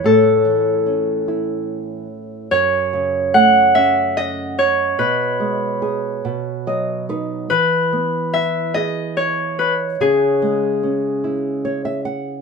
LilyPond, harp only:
\new Staff \with { instrumentName = "Harp" } { \time 6/8 \key e \major \tempo 4. = 48 a'2~ a'8 r8 | cis''4 fis''8 e''8 dis''8 cis''8 | b'2~ b'8 r8 | b'4 e''8 dis''8 cis''8 b'8 |
gis'2~ gis'8 r8 | }